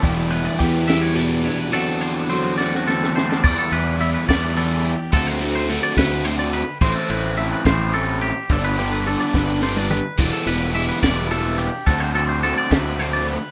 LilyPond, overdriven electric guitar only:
\new Staff \with { instrumentName = "Overdriven electric guitar" } { \time 6/8 \key d \mixolydian \tempo 4. = 71 <e g b e'>4 <e g b e'>8 <e g b e'>8 <e g b e'>4 | <d a c' fis'>4 <d a c' fis'>8 <d a c' fis'>8 <d a c' fis'>4 | \key e \minor <e g b e'>8 <e g b e'>8 <e g b e'>8 <e g b e'>8 <e g b e'>8 r8 | <d a c' fis'>8 <d a c' fis'>8 <d a c' fis'>8 <d a c' fis'>8 <d a c' fis'>8 r8 |
<e a c' e'>8 <e a c' e'>8 <e a c' e'>8 <e a c' e'>8 <e a c' e'>8 r8 | <d g b d'>8 <d g b d'>8 <d g b d'>8 <d g b d'>8 <d g b d'>8 r8 | <e g b e'>8 <e g b e'>8 <e g b e'>8 <e g b e'>8 <e g b e'>8 r8 | <d a c' fis'>8 <d a c' fis'>8 <d a c' fis'>8 <d a c' fis'>8 <d a c' fis'>8 r8 | }